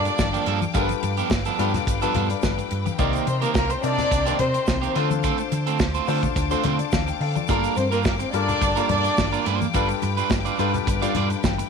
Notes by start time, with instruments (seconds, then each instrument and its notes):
Already playing: grand piano G3 D4 F4 A4 A#4, string section A#3 F5 G5 D6, violin section D4 D5
0.05 muted clean electric guitar stroke, closed hi-hat, shaker
0.19 fingered electric bass G1, muted clean electric guitar stroke, kick, snare, high conga, shaker
0.33 clean electric guitar F3 A#3 D4 G4, closed hi-hat, shaker
0.46 fingered electric bass G2, clean electric guitar F3 A#3 D4 A4, closed hi-hat
0.61 muted clean electric guitar stroke, closed hi-hat, high conga, shaker
0.74 fingered electric bass G1, clean electric guitar F3 B3 D4 G4, grand piano G3 D4 F4 A4 A#4, string section B4 F5, kick, closed hi-hat, muted conga, shaker
0.82 grand piano B4
0.89 muted clean electric guitar stroke, closed hi-hat, shaker
1.03 fingered electric bass G2, muted clean electric guitar stroke, closed hi-hat, muted conga, shaker
1.17 clean electric guitar F3 B3 D4 G4, closed hi-hat, shaker
1.30 fingered electric bass G1, kick, snare, high conga, shaker
1.45 clean electric guitar F3 B3 D4 A4, closed hi-hat, shaker
1.58 fingered electric bass G2, clean electric guitar F3 B3 D4 G4, grand piano G3 D4 F4 A4 B4, closed hi-hat, shaker
1.74 muted clean electric guitar stroke, snare, closed hi-hat, low conga, shaker
1.87 fingered electric bass G1, muted clean electric guitar stroke, kick, closed hi-hat, shaker
2.01 clean electric guitar F3 B3 D4 A4, grand piano G3 D4 F4 A4 B4, closed hi-hat, shaker
2.15 fingered electric bass G2, clean electric guitar F3 B3 D4 A4, grand piano F5, closed hi-hat, muted conga, low conga
2.30 grand piano D5, muted clean electric guitar stroke, closed hi-hat, shaker
2.43 fingered electric bass G1, grand piano B4, muted clean electric guitar stroke, kick, snare, high conga, shaker
2.58 muted clean electric guitar stroke, closed hi-hat, shaker
2.71 fingered electric bass G2, closed hi-hat
2.86 muted clean electric guitar stroke, closed hi-hat, high conga, shaker
2.98 fingered electric bass C2, grand piano C3 C4 D#4 A#4 D5, clean electric guitar D#3 A#3 C4 G4, string section C5 A#5, kick, closed hi-hat, muted conga, shaker
3.13 closed hi-hat, shaker
3.27 fingered electric bass C3, violin section C4 C5, muted clean electric guitar stroke, closed hi-hat, muted conga, shaker
3.42 clean electric guitar D#3 A#3 C4 G4, violin section A#3 A#4, closed hi-hat, shaker
3.54 fingered electric bass C2, violin section A#3 A#4, muted clean electric guitar stroke, kick, snare, high conga, shaker
3.70 violin section C4 C5, muted clean electric guitar stroke, closed hi-hat, shaker
3.82 grand piano C3 C4 D#4 A#4 D5, fingered electric bass C3, violin section D4 D5, closed hi-hat, shaker
3.98 muted clean electric guitar stroke, snare, closed hi-hat, low conga, shaker
4.11 fingered electric bass C2, muted clean electric guitar stroke, kick, closed hi-hat, shaker
4.26 grand piano C3 C4 D#4 A#4 D5, clean electric guitar D#3 A#3 C4 G4, closed hi-hat, shaker
4.39 fingered electric bass C3, violin section C4 C5, muted clean electric guitar stroke, closed hi-hat, muted conga, low conga
4.54 muted clean electric guitar stroke, closed hi-hat, shaker
4.67 fingered electric bass C2, muted clean electric guitar stroke, kick, snare, high conga, shaker
4.82 clean electric guitar D#3 A#3 C4 G4, closed hi-hat, shaker
4.95 grand piano D3 D4 F4 A4 C5, fingered electric bass D3, clean electric guitar A3 C4 F4 C5, string section F5 A5 D6, closed hi-hat
5.11 muted clean electric guitar stroke, closed hi-hat, high conga, shaker
5.23 clean electric guitar A3 C4 F4 A4, kick, closed hi-hat, muted conga, shaker
5.38 muted clean electric guitar stroke, closed hi-hat, shaker
5.52 fingered electric bass D3, muted clean electric guitar stroke, closed hi-hat, muted conga, shaker
5.67 clean electric guitar A3 C4 F4 A4, closed hi-hat, shaker
5.79 fingered electric bass D2, muted clean electric guitar stroke, kick, snare, high conga, shaker
5.94 clean electric guitar A3 C4 F4 C5, closed hi-hat, shaker
6.07 grand piano D3 D4 F4 A4 C5, fingered electric bass D3, clean electric guitar A3 C4 F4 A4, open hi-hat, shaker
6.23 muted clean electric guitar stroke, kick, closed hi-hat, low conga, shaker
6.36 fingered electric bass D2, muted clean electric guitar stroke, kick, closed hi-hat, shaker
6.50 grand piano D3 D4 F4 A4 C5, clean electric guitar A3 C4 F4 C5, closed hi-hat, shaker
6.63 fingered electric bass D3, clean electric guitar A3 C4 F4 C5, grand piano C5, closed hi-hat, muted conga, low conga
6.79 grand piano D5, muted clean electric guitar stroke, closed hi-hat, shaker
6.92 fingered electric bass D2, grand piano F5, muted clean electric guitar stroke, kick, snare, high conga, shaker
7.08 grand piano G5, muted clean electric guitar stroke, closed hi-hat, shaker
7.20 fingered electric bass D3, grand piano A4 F5 A5, open hi-hat
7.36 grand piano F4 D5, muted clean electric guitar stroke, closed hi-hat, high conga, shaker
7.48 fingered electric bass G1, grand piano G3 D4 F4 A4 A#4, clean electric guitar A#3 D4 F4 A#4, string section A#3 G5, kick, closed hi-hat, muted conga, shaker
7.64 closed hi-hat, shaker
7.76 fingered electric bass G2, violin section C4 C5, muted clean electric guitar stroke, closed hi-hat, muted conga, shaker
7.91 violin section A#3 A#4, clean electric guitar A#3 D4 F4 A#4, closed hi-hat, shaker
8.04 fingered electric bass G1, violin section A#3 A#4, muted clean electric guitar stroke, kick, snare, high conga, shaker
8.19 violin section C4 C5, muted clean electric guitar stroke, closed hi-hat, shaker
8.33 fingered electric bass G2, grand piano G3 D4 F4 A4 A#4, violin section D4 D5, closed hi-hat, shaker
8.48 muted clean electric guitar stroke, closed hi-hat, low conga, shaker
8.61 fingered electric bass G1, muted clean electric guitar stroke, kick, closed hi-hat, muted conga, shaker
8.76 grand piano G3 D4 F4 A4 A#4, clean electric guitar A#3 D4 F4 A#4, closed hi-hat, shaker
8.89 fingered electric bass G2, violin section D4 D5, muted clean electric guitar stroke, closed hi-hat, muted conga, low conga
9.04 muted clean electric guitar stroke, closed hi-hat, shaker
9.17 fingered electric bass G1, muted clean electric guitar stroke, kick, snare, high conga, shaker
9.32 clean electric guitar A#3 D4 F4 A#4, closed hi-hat, shaker
9.46 fingered electric bass G2, clean electric guitar A#3 D4 F4 C5, closed hi-hat
9.61 muted clean electric guitar stroke, closed hi-hat, high conga, shaker
9.74 fingered electric bass G1, clean electric guitar G3 D4 F4 B4, grand piano G3 D4 F4 A4 B4, string section B4, kick, closed hi-hat, muted conga, shaker
9.89 muted clean electric guitar stroke, closed hi-hat, shaker
10.02 fingered electric bass G2, muted clean electric guitar stroke, closed hi-hat, muted conga, shaker
10.17 clean electric guitar G3 D4 F4 B4, closed hi-hat, shaker
10.30 fingered electric bass G1, muted clean electric guitar stroke, kick, snare, high conga, shaker
10.45 clean electric guitar G3 D4 F4 D5, closed hi-hat, shaker
10.58 fingered electric bass G2, clean electric guitar G3 D4 F4 B4, grand piano G3 D4 F4 A4 B4, closed hi-hat, shaker
10.74 muted clean electric guitar stroke, closed hi-hat, low conga, shaker
10.87 fingered electric bass G1, muted clean electric guitar stroke, kick, closed hi-hat, muted conga, shaker
11.01 grand piano G3 D4 F4 A4 D5, clean electric guitar G3 D4 F4 D5, closed hi-hat, shaker
11.15 fingered electric bass G2, clean electric guitar G3 D4 F4 D5, closed hi-hat, muted conga, low conga
11.30 muted clean electric guitar stroke, closed hi-hat, shaker
11.44 fingered electric bass G1, grand piano G5, muted clean electric guitar stroke, kick, snare, high conga, shaker
11.58 muted clean electric guitar stroke, closed hi-hat, shaker